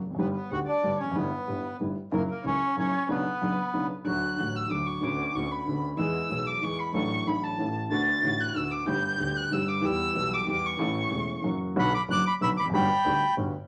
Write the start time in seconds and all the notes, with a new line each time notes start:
0.03 F1 E2
0.10 F2
0.15 G1 F#2 G2 D3 G3
0.19 G1 B3 G4 B4
0.33 B3 B4
0.50 D2 D3 G3 B3 F#4 G4 F#5
0.66 D4 D5
0.83 G1 G2 D3 G3 B3 G4
0.98 F1 C#4 C#5
1.04 E2 F2
1.12 G1 F#2 G2 D3 G3 B4
1.16 G1 B3 E4
1.48 G1 G2 D3 G3 B3 E4
1.80 G1 G2 D3 G3 B3 E4
2.12 F#1 F#2 C#3 F#3 A#3 E4 A#4
2.29 A#3 A#4
2.44 C#2 C#3 F#3 A#3 C#4 E4 C#5
2.76 F#1 F#2 C#3 F#3 A#3 C#4 E4 C#5
3.09 B1 B2 C#3 F#3 B3 D4 B4
3.41 F#1 F#2 C#3 F#3 B3 D4
3.74 B1 B2 C#3 F#3 B3 D4
4.04 D2 D3 F#3 A3 F#4 F#6
4.36 A1 A2 D3 F#3 A3
4.40 F#4
4.56 E6
4.70 D2 D3 F#3 A3 F#4 D6
4.87 C#6
5.01 D2 D3 B3 C#4 D6
5.05 F#4
5.35 D2 D3 B3 C#4 F#4 C#6
5.52 B5
5.67 D2 D3 B3 C#4 F#4
5.97 E2 E3 G#3 B3 E6
6.01 G#4
6.29 B1 B2 E3 G#3 B3
6.33 G#4
6.47 D6
6.61 E2 E3 G#3 B3 G#4 C#6
6.80 B5
6.93 A1 A2 F#3 A3 D4 A4 C#6
7.25 A1 A2 F#3 A3 D4 B5
7.29 A4
7.43 A5
7.57 A1 A2 E3 A3 C#4 A4
7.91 D2 D3 A3 B3 F#4 A6
8.22 A1 A2 D3 A3 B3
8.26 F#4
8.40 F#6
8.54 D2 D3 A3 B3 E6
8.58 F#4
8.71 D6
8.85 G1 G2 D3 G3 B3 G4 G6
9.17 D2 D3 G3 B3
9.22 G4
9.37 F#6
9.50 G1 G2 D3 G3 B3 G4 E6
9.68 D6
9.81 E2 E3 G3 B3 G4 E6
10.13 B1 B2 E3 G3 B3 G4
10.34 D6
10.45 E2 E3 G3 B3
10.49 G4 D6
10.66 C#6
10.77 A1 A2 E3 A3 C#4
10.81 A4
11.10 E1 E2 E3 A3 C#4
11.14 A4
11.42 F#1 F#2 E3 F#3 A#3 C#4
11.46 F#4
11.76 B1 B2 D3 F#3 B3 F#4 F#5 B5
11.94 B5 D6
12.08 F#1 F#2 D3 F#3 B3 F#4 F#6
12.13 D6
12.26 B5 D6
12.41 B1 B2 D3 F#3 B3 F#4 B5 E6
12.57 F1 E2 B5 D6
12.65 F2
12.70 G1 F#2 G2 D3 G3
12.74 B3 F#4 G5 B5
13.06 D2 D3 G3 B3 F#4
13.37 G1 G2 D3 G3 B3 F#4